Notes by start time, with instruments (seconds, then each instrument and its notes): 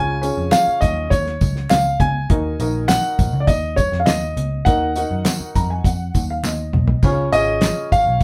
Already playing: picked electric bass C#2, upright piano C#3 C#4 F4 G#4 C#5, grand piano G#5
0.21 upright piano C#4 F4 G#4 C#5, closed hi-hat, tambourine
0.37 picked electric bass F2
0.51 grand piano F5, snare, clap, closed hi-hat, tambourine, high conga
0.68 muted picked electric bass stroke
0.81 picked electric bass D#2, grand piano D#5, kick, closed hi-hat, tambourine, low conga
1.10 picked electric bass D#2, grand piano C#5, kick, closed hi-hat, tambourine, muted conga
1.26 snare
1.41 picked electric bass C#2, kick, closed hi-hat, tambourine, low conga
1.56 snare
1.70 picked electric bass C#2, grand piano F5, snare, clap, closed hi-hat, tambourine, high conga
2.00 picked electric bass C#2, grand piano G#5, kick, closed hi-hat, high conga
2.29 picked electric bass D#2, upright piano D#3 D#4 F#4 A#4 D#5, kick, closed hi-hat, muted conga
2.60 picked electric bass A#1, upright piano D#4 F#4 A#4 D#5, closed hi-hat, tambourine, muted conga
2.88 grand piano F#5, snare, clap, closed hi-hat, tambourine, high conga
3.19 picked electric bass A#1, kick, closed hi-hat, tambourine, low conga
3.33 picked electric bass C#2
3.40 grand piano D5
3.47 picked electric bass D#2, grand piano D#5, kick, closed hi-hat, tambourine, muted conga
3.76 grand piano C#5, kick, closed hi-hat, tambourine, low conga
3.92 picked electric bass F2, snare
4.00 grand piano F5
4.06 picked electric bass D#2, grand piano D#5, snare, clap, closed hi-hat, tambourine, high conga
4.37 picked electric bass C#2, closed hi-hat, high conga
4.65 picked electric bass D#2, upright piano D#3 D#4 F#4 A#4 D#5, grand piano F#5, kick, closed hi-hat, tambourine, muted conga
4.96 upright piano D#4 F#4 A#4 F#5, closed hi-hat, tambourine, muted conga
5.11 picked electric bass F#2
5.25 snare, clap, closed hi-hat, tambourine, high conga
5.40 muted picked electric bass stroke
5.55 picked electric bass F2, upright piano A#5, kick, closed hi-hat, tambourine, low conga
5.70 upright piano G#5
5.84 picked electric bass F2, upright piano F#5, kick, closed hi-hat, tambourine, muted conga
6.14 picked electric bass D#2, kick, closed hi-hat, tambourine, low conga
6.30 upright piano F5
6.43 picked electric bass D#2, upright piano D#5, snare, clap, tambourine, high conga
6.73 picked electric bass B1, mid tom, high conga
6.88 floor tom
7.02 picked electric bass C#2, upright piano C#3 C#4 F4 G#4 C#5, kick, tambourine, splash, muted conga
7.32 picked electric bass G#1, upright piano C#4 F4 G#4 C#5, grand piano D#5, closed hi-hat, tambourine, muted conga
7.61 snare, clap, closed hi-hat, tambourine, high conga
7.92 picked electric bass G#1, grand piano F5, kick, closed hi-hat, tambourine, low conga
8.07 picked electric bass B1